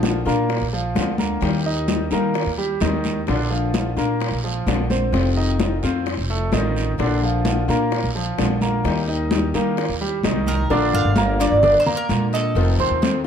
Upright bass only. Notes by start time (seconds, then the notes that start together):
Already playing: A#1
0.26 A#2
0.61 A#1
0.96 D2
1.42 D#2
2.11 D#3
2.46 D#2
2.81 D#2
3.28 A#1
3.97 A#2
4.31 A#1
4.66 A#1
5.12 F1
5.83 F2
6.17 F1
6.52 A1
6.99 A#1
7.68 A#2
8.03 A#1
8.38 A#1
8.84 D#2
9.54 D#3
9.89 D#2
10.24 C2
10.71 A#1
10.93 G1
11.05 G1
11.51 G1
12.09 A#2
12.55 F1
12.79 D#2
12.90 D#2